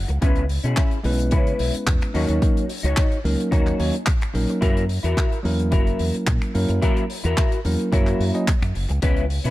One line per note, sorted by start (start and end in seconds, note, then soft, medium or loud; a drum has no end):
0.00 0.19 F#5 medium
0.08 0.18 C#2 medium
0.08 muted clean electric guitar stroke medium
0.08 closed hi-hat medium
0.21 0.57 C#2 medium
0.21 0.44 G#3 medium
0.21 0.44 B3 medium
0.21 0.43 C#4 loud
0.21 0.44 C#4 medium
0.21 0.44 E4 medium
0.21 0.43 E4 loud
0.21 0.44 B4 loud
0.21 kick loud
0.21 closed hi-hat medium
0.36 closed hi-hat soft
0.49 open hi-hat loud
0.64 0.73 B2 loud
0.64 0.98 C#4 medium
0.64 0.98 E4 medium
0.64 0.99 G#4 medium
0.64 closed hi-hat medium
0.77 kick loud
0.77 clap loud
0.77 closed hi-hat medium
0.91 closed hi-hat medium
1.04 1.34 B1 medium
1.04 2.11 G#3 medium
1.04 2.11 B3 medium
1.04 2.12 C#4 medium
1.04 2.12 E4 medium
1.04 2.12 B4 loud
1.04 open hi-hat loud
1.19 closed hi-hat medium
1.31 1.52 C#3 medium
1.31 1.74 C#4 medium
1.31 1.74 E4 medium
1.31 1.75 B4 medium
1.31 kick loud
1.31 closed hi-hat medium
1.47 closed hi-hat soft
1.59 1.70 B1 medium
1.59 open hi-hat loud
1.75 closed hi-hat medium
1.87 1.97 E2 medium
1.87 kick loud
1.87 clap loud
1.87 closed hi-hat medium
2.01 finger snap medium
2.01 closed hi-hat medium
2.14 2.25 D#2 medium
2.14 2.39 F#3 medium
2.14 2.39 A#3 medium
2.14 2.39 C#4 medium
2.14 2.69 D#4 medium
2.14 2.39 D#4 medium
2.14 2.70 F#4 medium
2.14 2.39 A#4 medium
2.14 2.70 C#5 loud
2.14 open hi-hat medium
2.29 2.38 D#2 medium
2.29 closed hi-hat medium
2.42 2.64 F#3 medium
2.42 2.64 A#3 medium
2.42 2.64 C#4 medium
2.42 2.64 D#4 medium
2.42 2.64 A#4 medium
2.42 kick loud
2.42 closed hi-hat medium
2.57 closed hi-hat soft
2.69 open hi-hat loud
2.83 2.93 C#2 medium
2.83 3.18 D#4 medium
2.83 3.18 F#4 medium
2.83 3.19 C#5 medium
2.83 closed hi-hat medium
2.97 kick loud
2.97 clap loud
2.97 closed hi-hat medium
3.12 closed hi-hat soft
3.24 3.35 C#2 medium
3.24 3.49 F#3 medium
3.24 3.49 A#3 medium
3.24 3.49 C#4 medium
3.24 3.49 D#4 medium
3.24 3.49 A#4 medium
3.24 open hi-hat medium
3.40 closed hi-hat soft
3.51 3.72 D#2 medium
3.51 3.77 F#3 medium
3.51 3.77 A#3 medium
3.51 3.77 C#4 medium
3.51 3.94 D#4 medium
3.51 3.77 D#4 medium
3.51 3.94 F#4 medium
3.51 3.95 A#4 medium
3.51 3.77 C#5 loud
3.51 kick loud
3.51 closed hi-hat medium
3.67 clap soft
3.67 closed hi-hat soft
3.79 3.90 D#2 medium
3.79 3.94 F#3 medium
3.79 3.94 A#3 medium
3.79 3.94 C#4 medium
3.79 3.94 D#4 medium
3.79 3.94 C#5 medium
3.79 open hi-hat loud
3.94 closed hi-hat soft
4.06 kick loud
4.06 clap loud
4.06 closed hi-hat medium
4.21 finger snap medium
4.21 closed hi-hat medium
4.34 4.45 A#1 medium
4.34 4.59 F#3 medium
4.34 4.59 A#3 medium
4.34 4.59 C#4 medium
4.34 4.59 D#4 medium
4.34 4.59 A#4 medium
4.34 muted clean electric guitar stroke soft
4.34 open hi-hat medium
4.48 muted clean electric guitar stroke medium
4.48 closed hi-hat medium
4.61 4.98 F#2 medium
4.61 4.84 F#3 medium
4.61 4.84 A#3 medium
4.61 4.84 C#4 medium
4.61 4.83 E4 loud
4.61 4.84 E4 medium
4.61 4.83 F#4 loud
4.61 4.84 A#4 loud
4.61 kick loud
4.61 closed hi-hat medium
4.77 closed hi-hat medium
4.89 open hi-hat medium
5.03 5.13 E2 loud
5.03 5.38 E4 medium
5.03 5.38 F#4 medium
5.03 5.39 A#4 medium
5.03 closed hi-hat medium
5.17 kick loud
5.17 clap loud
5.17 closed hi-hat medium
5.32 closed hi-hat soft
5.43 5.74 E2 medium
5.43 6.51 F#3 medium
5.43 6.51 A#3 medium
5.43 6.52 C#4 medium
5.43 6.52 E4 medium
5.43 6.52 A#4 loud
5.43 open hi-hat medium
5.59 closed hi-hat medium
5.71 5.92 F#1 medium
5.71 6.14 E4 medium
5.71 6.14 F#4 medium
5.71 6.15 A#4 medium
5.71 kick loud
5.71 closed hi-hat medium
5.87 closed hi-hat soft
5.99 6.10 E2 medium
5.99 open hi-hat loud
6.14 muted fingered electric bass stroke soft
6.14 closed hi-hat medium
6.27 6.38 A#2 medium
6.27 kick loud
6.27 clap loud
6.27 closed hi-hat medium
6.42 finger snap medium
6.42 closed hi-hat soft
6.54 6.65 F#2 medium
6.54 6.79 F#3 medium
6.54 6.79 A#3 medium
6.54 6.79 C#4 medium
6.54 6.79 E4 medium
6.54 6.80 A#4 medium
6.54 muted clean electric guitar stroke soft
6.54 open hi-hat medium
6.68 6.79 F#2 medium
6.68 muted clean electric guitar stroke medium
6.68 closed hi-hat medium
6.82 7.04 F#3 medium
6.82 7.04 A#3 medium
6.82 7.04 C#4 medium
6.82 7.03 E4 loud
6.82 7.05 E4 medium
6.82 7.04 F#4 medium
6.82 7.05 A#4 medium
6.82 7.04 A#4 loud
6.82 kick loud
6.82 closed hi-hat medium
6.97 closed hi-hat soft
7.10 open hi-hat loud
7.24 7.34 E2 loud
7.24 7.58 E4 medium
7.24 7.59 F#4 medium
7.24 7.59 A#4 medium
7.24 closed hi-hat medium
7.37 kick loud
7.37 clap loud
7.37 closed hi-hat medium
7.52 closed hi-hat medium
7.65 7.75 E2 medium
7.65 7.89 F#3 medium
7.65 7.90 A#3 medium
7.65 7.90 C#4 medium
7.65 7.90 E4 medium
7.65 7.90 A#4 medium
7.65 open hi-hat loud
7.79 closed hi-hat medium
7.92 8.13 F#2 medium
7.92 8.31 F#3 medium
7.92 8.31 A#3 medium
7.92 8.31 C#4 medium
7.92 8.34 E4 medium
7.92 8.31 E4 medium
7.92 8.35 F#4 medium
7.92 8.35 A#4 medium
7.92 8.31 C#5 loud
7.92 kick loud
7.92 closed hi-hat medium
8.07 clap soft
8.07 closed hi-hat soft
8.20 8.30 F#2 medium
8.20 open hi-hat loud
8.34 8.47 F#3 medium
8.34 8.47 A#3 medium
8.34 8.47 C#4 medium
8.34 8.48 E4 medium
8.34 8.48 D#5 medium
8.34 closed hi-hat medium
8.48 kick loud
8.48 clap loud
8.48 closed hi-hat medium
8.62 8.71 F#2 medium
8.62 finger snap medium
8.62 closed hi-hat soft
8.74 8.86 F#1 medium
8.74 muted clean electric guitar stroke soft
8.74 open hi-hat medium
8.89 8.99 C#2 loud
8.89 muted clean electric guitar stroke medium
8.89 closed hi-hat medium
9.02 9.24 G#3 medium
9.02 9.25 B3 medium
9.02 9.24 C#4 loud
9.02 9.25 C#4 medium
9.02 9.25 E4 medium
9.02 9.24 E4 loud
9.02 9.25 B4 loud
9.02 9.24 B4 loud
9.02 kick loud
9.02 closed hi-hat loud
9.17 closed hi-hat soft
9.30 open hi-hat medium
9.44 9.50 B2 medium
9.44 9.50 C#4 medium
9.44 9.50 E4 medium
9.44 9.50 B4 medium
9.44 closed hi-hat medium